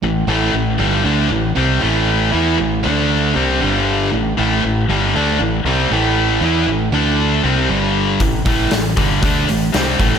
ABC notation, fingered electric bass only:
X:1
M:4/4
L:1/8
Q:1/4=118
K:Am
V:1 name="Fingered electric bass" clef=bass
A,,, A,,, A,,, G,,, D,, A,,, C,, A,,,- | A,,, E,, A,,, D,,2 C,, G,,,2 | A,,, A,,, A,,, G,,, D,, A,,, C,, A,,,- | A,,, E,, A,,, D,,2 C,, G,,,2 |
A,,, A,,, A,,, G,,, D,, A,,, C,, A,,, |]